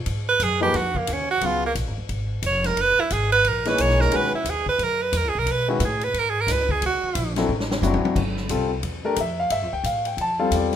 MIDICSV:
0, 0, Header, 1, 6, 480
1, 0, Start_track
1, 0, Tempo, 337079
1, 95, Time_signature, 4, 2, 24, 8
1, 15319, End_track
2, 0, Start_track
2, 0, Title_t, "Tenor saxophone"
2, 0, Program_c, 0, 66
2, 410, Note_on_c, 0, 71, 105
2, 615, Note_on_c, 0, 68, 93
2, 636, Note_off_c, 0, 71, 0
2, 886, Note_off_c, 0, 68, 0
2, 894, Note_on_c, 0, 67, 95
2, 1095, Note_on_c, 0, 66, 89
2, 1117, Note_off_c, 0, 67, 0
2, 1386, Note_on_c, 0, 58, 81
2, 1407, Note_off_c, 0, 66, 0
2, 1609, Note_on_c, 0, 61, 88
2, 1630, Note_off_c, 0, 58, 0
2, 1855, Note_off_c, 0, 61, 0
2, 1863, Note_on_c, 0, 66, 108
2, 2072, Note_on_c, 0, 65, 94
2, 2094, Note_off_c, 0, 66, 0
2, 2345, Note_off_c, 0, 65, 0
2, 2370, Note_on_c, 0, 58, 86
2, 2463, Note_off_c, 0, 58, 0
2, 3513, Note_on_c, 0, 73, 89
2, 3792, Note_on_c, 0, 70, 103
2, 3813, Note_off_c, 0, 73, 0
2, 4003, Note_on_c, 0, 71, 116
2, 4024, Note_off_c, 0, 70, 0
2, 4278, Note_on_c, 0, 64, 85
2, 4300, Note_off_c, 0, 71, 0
2, 4453, Note_on_c, 0, 68, 99
2, 4474, Note_off_c, 0, 64, 0
2, 4725, Note_off_c, 0, 68, 0
2, 4733, Note_on_c, 0, 71, 114
2, 4957, Note_on_c, 0, 70, 91
2, 4979, Note_off_c, 0, 71, 0
2, 5244, Note_on_c, 0, 71, 102
2, 5265, Note_off_c, 0, 70, 0
2, 5434, Note_on_c, 0, 73, 100
2, 5455, Note_off_c, 0, 71, 0
2, 5713, Note_on_c, 0, 70, 101
2, 5734, Note_off_c, 0, 73, 0
2, 5924, Note_on_c, 0, 71, 110
2, 5946, Note_off_c, 0, 70, 0
2, 6190, Note_off_c, 0, 71, 0
2, 6198, Note_on_c, 0, 64, 76
2, 6406, Note_on_c, 0, 68, 89
2, 6428, Note_off_c, 0, 64, 0
2, 6674, Note_off_c, 0, 68, 0
2, 6680, Note_on_c, 0, 71, 108
2, 6887, Note_on_c, 0, 70, 91
2, 6909, Note_off_c, 0, 71, 0
2, 7150, Note_on_c, 0, 71, 100
2, 7171, Note_off_c, 0, 70, 0
2, 7366, Note_on_c, 0, 70, 96
2, 7387, Note_off_c, 0, 71, 0
2, 7532, Note_on_c, 0, 68, 95
2, 7553, Note_off_c, 0, 70, 0
2, 7676, Note_on_c, 0, 70, 98
2, 7698, Note_off_c, 0, 68, 0
2, 7852, Note_on_c, 0, 71, 114
2, 7874, Note_off_c, 0, 70, 0
2, 8116, Note_off_c, 0, 71, 0
2, 8127, Note_on_c, 0, 64, 60
2, 8333, Note_on_c, 0, 68, 89
2, 8354, Note_off_c, 0, 64, 0
2, 8597, Note_on_c, 0, 71, 120
2, 8618, Note_off_c, 0, 68, 0
2, 8815, Note_on_c, 0, 70, 97
2, 8837, Note_off_c, 0, 71, 0
2, 8968, Note_on_c, 0, 68, 99
2, 8989, Note_off_c, 0, 70, 0
2, 9127, Note_on_c, 0, 70, 98
2, 9149, Note_off_c, 0, 68, 0
2, 9288, Note_on_c, 0, 71, 106
2, 9309, Note_off_c, 0, 70, 0
2, 9561, Note_on_c, 0, 68, 93
2, 9583, Note_off_c, 0, 71, 0
2, 9721, Note_off_c, 0, 68, 0
2, 9771, Note_on_c, 0, 66, 94
2, 10461, Note_off_c, 0, 66, 0
2, 15319, End_track
3, 0, Start_track
3, 0, Title_t, "Grand piano"
3, 0, Program_c, 1, 0
3, 861, Note_on_c, 1, 53, 72
3, 865, Note_on_c, 1, 58, 66
3, 866, Note_on_c, 1, 63, 63
3, 868, Note_on_c, 1, 68, 66
3, 873, Note_on_c, 1, 71, 89
3, 1032, Note_off_c, 1, 53, 0
3, 1034, Note_off_c, 1, 58, 0
3, 1034, Note_off_c, 1, 63, 0
3, 1035, Note_off_c, 1, 68, 0
3, 1038, Note_off_c, 1, 71, 0
3, 2013, Note_on_c, 1, 49, 57
3, 2015, Note_on_c, 1, 54, 57
3, 2020, Note_on_c, 1, 65, 58
3, 2027, Note_on_c, 1, 59, 50
3, 2030, Note_on_c, 1, 68, 64
3, 2286, Note_off_c, 1, 49, 0
3, 2287, Note_off_c, 1, 54, 0
3, 2289, Note_off_c, 1, 65, 0
3, 2292, Note_off_c, 1, 59, 0
3, 2294, Note_off_c, 1, 68, 0
3, 5217, Note_on_c, 1, 52, 72
3, 5217, Note_on_c, 1, 58, 68
3, 5218, Note_on_c, 1, 63, 65
3, 5225, Note_on_c, 1, 68, 66
3, 5227, Note_on_c, 1, 73, 81
3, 5834, Note_off_c, 1, 52, 0
3, 5835, Note_off_c, 1, 58, 0
3, 5835, Note_off_c, 1, 63, 0
3, 5839, Note_off_c, 1, 68, 0
3, 5840, Note_off_c, 1, 73, 0
3, 5865, Note_on_c, 1, 51, 67
3, 5871, Note_on_c, 1, 56, 68
3, 5876, Note_on_c, 1, 61, 65
3, 5878, Note_on_c, 1, 66, 66
3, 5881, Note_on_c, 1, 71, 77
3, 6133, Note_off_c, 1, 51, 0
3, 6136, Note_off_c, 1, 56, 0
3, 6139, Note_off_c, 1, 61, 0
3, 6140, Note_off_c, 1, 66, 0
3, 6141, Note_off_c, 1, 71, 0
3, 8091, Note_on_c, 1, 51, 82
3, 8093, Note_on_c, 1, 56, 72
3, 8095, Note_on_c, 1, 61, 74
3, 8097, Note_on_c, 1, 66, 70
3, 8099, Note_on_c, 1, 71, 88
3, 8249, Note_off_c, 1, 51, 0
3, 8250, Note_off_c, 1, 56, 0
3, 8251, Note_off_c, 1, 61, 0
3, 8252, Note_off_c, 1, 66, 0
3, 8253, Note_off_c, 1, 71, 0
3, 10488, Note_on_c, 1, 54, 72
3, 10491, Note_on_c, 1, 60, 65
3, 10494, Note_on_c, 1, 64, 66
3, 10495, Note_on_c, 1, 62, 63
3, 10501, Note_on_c, 1, 69, 85
3, 10646, Note_off_c, 1, 54, 0
3, 10647, Note_off_c, 1, 60, 0
3, 10649, Note_off_c, 1, 62, 0
3, 10649, Note_off_c, 1, 64, 0
3, 10652, Note_off_c, 1, 69, 0
3, 11144, Note_on_c, 1, 54, 65
3, 11144, Note_on_c, 1, 60, 64
3, 11150, Note_on_c, 1, 62, 69
3, 11150, Note_on_c, 1, 64, 63
3, 11154, Note_on_c, 1, 66, 77
3, 11621, Note_off_c, 1, 54, 0
3, 11621, Note_off_c, 1, 60, 0
3, 11624, Note_off_c, 1, 62, 0
3, 11624, Note_off_c, 1, 64, 0
3, 11626, Note_off_c, 1, 66, 0
3, 12102, Note_on_c, 1, 55, 60
3, 12108, Note_on_c, 1, 60, 62
3, 12111, Note_on_c, 1, 65, 63
3, 12113, Note_on_c, 1, 69, 76
3, 12369, Note_off_c, 1, 55, 0
3, 12371, Note_off_c, 1, 60, 0
3, 12373, Note_off_c, 1, 65, 0
3, 12374, Note_off_c, 1, 69, 0
3, 12881, Note_on_c, 1, 57, 89
3, 12883, Note_on_c, 1, 62, 72
3, 12887, Note_on_c, 1, 67, 73
3, 12892, Note_on_c, 1, 70, 100
3, 12896, Note_on_c, 1, 74, 75
3, 13041, Note_off_c, 1, 57, 0
3, 13042, Note_off_c, 1, 62, 0
3, 13044, Note_off_c, 1, 67, 0
3, 13047, Note_off_c, 1, 70, 0
3, 13062, Note_off_c, 1, 74, 0
3, 13109, Note_on_c, 1, 76, 74
3, 13373, Note_off_c, 1, 76, 0
3, 13381, Note_on_c, 1, 77, 98
3, 13544, Note_off_c, 1, 77, 0
3, 13553, Note_on_c, 1, 76, 82
3, 13834, Note_off_c, 1, 76, 0
3, 13854, Note_on_c, 1, 79, 112
3, 14020, Note_off_c, 1, 79, 0
3, 14037, Note_on_c, 1, 77, 83
3, 14316, Note_off_c, 1, 77, 0
3, 14332, Note_on_c, 1, 79, 84
3, 14499, Note_off_c, 1, 79, 0
3, 14543, Note_on_c, 1, 81, 108
3, 14799, Note_on_c, 1, 65, 70
3, 14801, Note_on_c, 1, 55, 83
3, 14803, Note_on_c, 1, 60, 66
3, 14804, Note_on_c, 1, 69, 80
3, 14805, Note_on_c, 1, 77, 78
3, 14809, Note_off_c, 1, 81, 0
3, 14975, Note_off_c, 1, 77, 0
3, 15026, Note_on_c, 1, 74, 81
3, 15291, Note_off_c, 1, 74, 0
3, 15319, Note_off_c, 1, 55, 0
3, 15319, Note_off_c, 1, 60, 0
3, 15319, Note_off_c, 1, 65, 0
3, 15319, Note_off_c, 1, 69, 0
3, 15319, End_track
4, 0, Start_track
4, 0, Title_t, "Upright bass"
4, 0, Program_c, 2, 32
4, 88, Note_on_c, 2, 44, 84
4, 558, Note_off_c, 2, 44, 0
4, 564, Note_on_c, 2, 42, 93
4, 1037, Note_off_c, 2, 42, 0
4, 1057, Note_on_c, 2, 41, 73
4, 1524, Note_off_c, 2, 41, 0
4, 1539, Note_on_c, 2, 39, 94
4, 2005, Note_off_c, 2, 39, 0
4, 2012, Note_on_c, 2, 37, 72
4, 2482, Note_off_c, 2, 37, 0
4, 2496, Note_on_c, 2, 34, 90
4, 2659, Note_off_c, 2, 34, 0
4, 2659, Note_on_c, 2, 32, 62
4, 2809, Note_off_c, 2, 32, 0
4, 2817, Note_on_c, 2, 30, 50
4, 2968, Note_off_c, 2, 30, 0
4, 2976, Note_on_c, 2, 32, 74
4, 3445, Note_off_c, 2, 32, 0
4, 3453, Note_on_c, 2, 29, 88
4, 3923, Note_off_c, 2, 29, 0
4, 3942, Note_on_c, 2, 30, 77
4, 4220, Note_off_c, 2, 30, 0
4, 4426, Note_on_c, 2, 32, 87
4, 4890, Note_off_c, 2, 32, 0
4, 4912, Note_on_c, 2, 34, 80
4, 5373, Note_off_c, 2, 34, 0
4, 5401, Note_on_c, 2, 35, 89
4, 5858, Note_off_c, 2, 35, 0
4, 5869, Note_on_c, 2, 37, 79
4, 6145, Note_off_c, 2, 37, 0
4, 6330, Note_on_c, 2, 39, 82
4, 6802, Note_off_c, 2, 39, 0
4, 6816, Note_on_c, 2, 42, 81
4, 7285, Note_off_c, 2, 42, 0
4, 7299, Note_on_c, 2, 40, 96
4, 7460, Note_off_c, 2, 40, 0
4, 7460, Note_on_c, 2, 37, 61
4, 7613, Note_off_c, 2, 37, 0
4, 7621, Note_on_c, 2, 35, 76
4, 7771, Note_off_c, 2, 35, 0
4, 7778, Note_on_c, 2, 47, 75
4, 8246, Note_off_c, 2, 47, 0
4, 8260, Note_on_c, 2, 45, 104
4, 8726, Note_off_c, 2, 45, 0
4, 8740, Note_on_c, 2, 44, 84
4, 9202, Note_off_c, 2, 44, 0
4, 9210, Note_on_c, 2, 37, 91
4, 9681, Note_off_c, 2, 37, 0
4, 9709, Note_on_c, 2, 38, 85
4, 9982, Note_off_c, 2, 38, 0
4, 10183, Note_on_c, 2, 34, 104
4, 10647, Note_off_c, 2, 34, 0
4, 10663, Note_on_c, 2, 33, 93
4, 11126, Note_off_c, 2, 33, 0
4, 11134, Note_on_c, 2, 30, 101
4, 11413, Note_off_c, 2, 30, 0
4, 11617, Note_on_c, 2, 31, 70
4, 12083, Note_off_c, 2, 31, 0
4, 12102, Note_on_c, 2, 36, 89
4, 12565, Note_off_c, 2, 36, 0
4, 12574, Note_on_c, 2, 40, 81
4, 13041, Note_off_c, 2, 40, 0
4, 13056, Note_on_c, 2, 41, 97
4, 13522, Note_off_c, 2, 41, 0
4, 13534, Note_on_c, 2, 43, 73
4, 13701, Note_off_c, 2, 43, 0
4, 13701, Note_on_c, 2, 41, 52
4, 13844, Note_off_c, 2, 41, 0
4, 13852, Note_on_c, 2, 38, 70
4, 13998, Note_off_c, 2, 38, 0
4, 14006, Note_on_c, 2, 45, 90
4, 14476, Note_off_c, 2, 45, 0
4, 14484, Note_on_c, 2, 41, 82
4, 14955, Note_off_c, 2, 41, 0
4, 14968, Note_on_c, 2, 40, 93
4, 15319, Note_off_c, 2, 40, 0
4, 15319, End_track
5, 0, Start_track
5, 0, Title_t, "Muted upright bass strokes"
5, 4251, Note_on_c, 9, 29, 42
5, 4394, Note_off_c, 9, 29, 0
5, 6160, Note_on_c, 9, 29, 39
5, 6303, Note_off_c, 9, 29, 0
5, 10007, Note_on_c, 9, 29, 45
5, 10150, Note_off_c, 9, 29, 0
5, 11437, Note_on_c, 9, 29, 41
5, 11580, Note_off_c, 9, 29, 0
5, 15319, End_track
6, 0, Start_track
6, 0, Title_t, "Drums"
6, 85, Note_on_c, 9, 51, 63
6, 227, Note_off_c, 9, 51, 0
6, 566, Note_on_c, 9, 44, 53
6, 566, Note_on_c, 9, 51, 70
6, 709, Note_off_c, 9, 44, 0
6, 709, Note_off_c, 9, 51, 0
6, 1051, Note_on_c, 9, 51, 58
6, 1052, Note_on_c, 9, 38, 38
6, 1193, Note_off_c, 9, 51, 0
6, 1195, Note_off_c, 9, 38, 0
6, 1349, Note_on_c, 9, 36, 61
6, 1491, Note_off_c, 9, 36, 0
6, 1527, Note_on_c, 9, 44, 56
6, 1527, Note_on_c, 9, 51, 78
6, 1669, Note_off_c, 9, 44, 0
6, 1669, Note_off_c, 9, 51, 0
6, 2013, Note_on_c, 9, 51, 65
6, 2156, Note_off_c, 9, 51, 0
6, 2498, Note_on_c, 9, 44, 59
6, 2498, Note_on_c, 9, 51, 65
6, 2640, Note_off_c, 9, 44, 0
6, 2640, Note_off_c, 9, 51, 0
6, 2976, Note_on_c, 9, 51, 56
6, 3119, Note_off_c, 9, 51, 0
6, 3453, Note_on_c, 9, 44, 61
6, 3453, Note_on_c, 9, 51, 72
6, 3596, Note_off_c, 9, 44, 0
6, 3596, Note_off_c, 9, 51, 0
6, 3762, Note_on_c, 9, 51, 47
6, 3763, Note_on_c, 9, 38, 40
6, 3904, Note_off_c, 9, 51, 0
6, 3905, Note_off_c, 9, 38, 0
6, 3944, Note_on_c, 9, 51, 65
6, 4086, Note_off_c, 9, 51, 0
6, 4420, Note_on_c, 9, 44, 58
6, 4420, Note_on_c, 9, 51, 74
6, 4562, Note_off_c, 9, 44, 0
6, 4562, Note_off_c, 9, 51, 0
6, 4729, Note_on_c, 9, 51, 48
6, 4871, Note_off_c, 9, 51, 0
6, 4906, Note_on_c, 9, 51, 59
6, 5048, Note_off_c, 9, 51, 0
6, 5203, Note_on_c, 9, 51, 53
6, 5204, Note_on_c, 9, 38, 42
6, 5345, Note_off_c, 9, 51, 0
6, 5347, Note_off_c, 9, 38, 0
6, 5386, Note_on_c, 9, 44, 58
6, 5386, Note_on_c, 9, 51, 81
6, 5529, Note_off_c, 9, 44, 0
6, 5529, Note_off_c, 9, 51, 0
6, 5541, Note_on_c, 9, 38, 31
6, 5683, Note_off_c, 9, 38, 0
6, 5707, Note_on_c, 9, 38, 44
6, 5849, Note_off_c, 9, 38, 0
6, 5861, Note_on_c, 9, 51, 67
6, 6004, Note_off_c, 9, 51, 0
6, 6344, Note_on_c, 9, 44, 59
6, 6344, Note_on_c, 9, 51, 73
6, 6486, Note_off_c, 9, 44, 0
6, 6486, Note_off_c, 9, 51, 0
6, 6640, Note_on_c, 9, 36, 47
6, 6783, Note_off_c, 9, 36, 0
6, 6823, Note_on_c, 9, 51, 59
6, 6966, Note_off_c, 9, 51, 0
6, 7301, Note_on_c, 9, 44, 62
6, 7301, Note_on_c, 9, 51, 81
6, 7443, Note_off_c, 9, 44, 0
6, 7443, Note_off_c, 9, 51, 0
6, 7783, Note_on_c, 9, 51, 69
6, 7926, Note_off_c, 9, 51, 0
6, 8260, Note_on_c, 9, 44, 59
6, 8260, Note_on_c, 9, 51, 69
6, 8402, Note_off_c, 9, 44, 0
6, 8402, Note_off_c, 9, 51, 0
6, 8562, Note_on_c, 9, 51, 46
6, 8704, Note_off_c, 9, 51, 0
6, 8748, Note_on_c, 9, 51, 61
6, 8890, Note_off_c, 9, 51, 0
6, 9227, Note_on_c, 9, 44, 70
6, 9227, Note_on_c, 9, 51, 78
6, 9229, Note_on_c, 9, 38, 41
6, 9370, Note_off_c, 9, 44, 0
6, 9370, Note_off_c, 9, 51, 0
6, 9371, Note_off_c, 9, 38, 0
6, 9526, Note_on_c, 9, 36, 59
6, 9668, Note_off_c, 9, 36, 0
6, 9710, Note_on_c, 9, 51, 67
6, 9853, Note_off_c, 9, 51, 0
6, 10183, Note_on_c, 9, 44, 55
6, 10183, Note_on_c, 9, 51, 82
6, 10325, Note_off_c, 9, 44, 0
6, 10325, Note_off_c, 9, 51, 0
6, 10483, Note_on_c, 9, 51, 49
6, 10484, Note_on_c, 9, 38, 61
6, 10625, Note_off_c, 9, 51, 0
6, 10627, Note_off_c, 9, 38, 0
6, 10824, Note_on_c, 9, 38, 65
6, 10967, Note_off_c, 9, 38, 0
6, 10983, Note_on_c, 9, 38, 80
6, 11125, Note_off_c, 9, 38, 0
6, 11145, Note_on_c, 9, 44, 64
6, 11147, Note_on_c, 9, 48, 72
6, 11288, Note_off_c, 9, 44, 0
6, 11289, Note_off_c, 9, 48, 0
6, 11301, Note_on_c, 9, 48, 87
6, 11444, Note_off_c, 9, 48, 0
6, 11463, Note_on_c, 9, 48, 88
6, 11605, Note_off_c, 9, 48, 0
6, 11616, Note_on_c, 9, 36, 75
6, 11620, Note_on_c, 9, 49, 78
6, 11758, Note_off_c, 9, 36, 0
6, 11762, Note_off_c, 9, 49, 0
6, 11918, Note_on_c, 9, 38, 36
6, 12060, Note_off_c, 9, 38, 0
6, 12093, Note_on_c, 9, 44, 49
6, 12093, Note_on_c, 9, 51, 67
6, 12236, Note_off_c, 9, 44, 0
6, 12236, Note_off_c, 9, 51, 0
6, 12572, Note_on_c, 9, 51, 59
6, 12714, Note_off_c, 9, 51, 0
6, 13049, Note_on_c, 9, 44, 59
6, 13049, Note_on_c, 9, 51, 76
6, 13191, Note_off_c, 9, 44, 0
6, 13191, Note_off_c, 9, 51, 0
6, 13532, Note_on_c, 9, 51, 72
6, 13674, Note_off_c, 9, 51, 0
6, 14017, Note_on_c, 9, 44, 69
6, 14017, Note_on_c, 9, 51, 66
6, 14159, Note_off_c, 9, 44, 0
6, 14159, Note_off_c, 9, 51, 0
6, 14312, Note_on_c, 9, 51, 48
6, 14455, Note_off_c, 9, 51, 0
6, 14496, Note_on_c, 9, 51, 58
6, 14639, Note_off_c, 9, 51, 0
6, 14975, Note_on_c, 9, 44, 55
6, 14975, Note_on_c, 9, 51, 81
6, 15117, Note_off_c, 9, 44, 0
6, 15117, Note_off_c, 9, 51, 0
6, 15275, Note_on_c, 9, 51, 41
6, 15277, Note_on_c, 9, 38, 50
6, 15319, Note_off_c, 9, 38, 0
6, 15319, Note_off_c, 9, 51, 0
6, 15319, End_track
0, 0, End_of_file